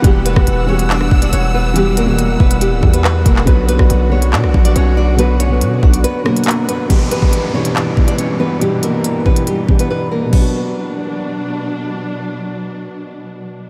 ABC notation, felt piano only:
X:1
M:4/4
L:1/16
Q:1/4=140
K:Bm
V:1 name="Felt piano"
[E,G,B,FG]3 [E,G,B,FG]3 [E,G,B,FG]6- [E,G,B,FG] z3 | [E,G,B,FG]3 [B,,E,G,FG]6 z [E,G,B,FG]6 | [D,F,B,FB]3 [D,F,B,Fd]3 [D,F,B,FB]6- [D,F,B,FB] z3 | [D,F,B,FB]3 [D,F,B,FB]6 z [B,,D,F,Fc]6 |
[B,,E,DG]6 [B,,E,DG]6- [B,,E,DG] z [B,,E,DG]2 | [B,,E,DG]6 [B,,E,DG]4 [B,,E,DG]6 | [B,,F,DF]16- | [B,,F,DF]16 |]